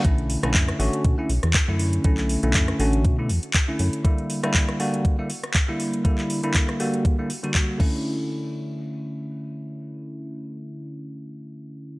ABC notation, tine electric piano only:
X:1
M:4/4
L:1/16
Q:"Swing 16ths" 1/4=120
K:Bm
V:1 name="Tine electric piano"
[D,A,CE]3 [D,A,CE]3 [D,A,CF]3 [D,A,CE] z3 [D,A,CE]3 | [D,A,CE]3 [D,A,CE]3 [D,A,CF]3 [D,A,CE] z3 [D,A,CE]3 | [D,G,^A,E]3 [D,G,A,E]3 [D,G,A,F]3 [D,G,A,E] z3 [D,G,A,E]3 | [D,G,^A,E]3 [D,G,A,E]3 [D,G,A,F]3 [D,G,A,E] z [D,G,A,F]3 [D,=A,CE]2- |
[D,A,CE]16- | [D,A,CE]16 |]